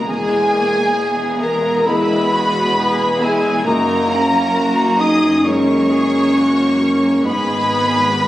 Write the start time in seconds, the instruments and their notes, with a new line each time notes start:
Already playing: felt piano E4 G#4
0.07 double bass section E1, cello section E2, felt piano E2, french horn section G#3, viola section G#3 G#4, violin section G#4 G#5, flute G#5
0.52 viola section A#3
0.97 viola section B3
1.41 violin section A#4 A#5, french horn section A#4, flute A#5
1.86 viola section G#3 E4, felt piano G#3 E4 G#4, french horn section B3, violin section B4 B5, flute B5
2.33 viola section F#4
2.78 viola section G#3 G#4
3.20 french horn section G#3, viola section E4, violin section G#4 G#5, flute G#5
3.65 double bass section F#1, cello section F#2, felt piano F#2, french horn section A#3, viola section A#3 D#4, violin section A#4 A#5, flute A#5
4.10 viola section C#4
4.55 viola section F#4
4.99 french horn section D#4, viola section G#4, violin section D#5 D#6, flute D#6
5.44 felt piano G#3 G#4 A#4, viola section A#3 A#4, french horn section C#4, violin section C#5 C#6, flute C#6
5.91 viola section G#4
6.37 viola section F#4
6.81 viola section A#4
7.24 double bass section G#1, cello section G#2, felt piano G#2, french horn section B3, viola section B3 G#4, violin section B4 B5, flute B5
8.16 viola section G#3 B3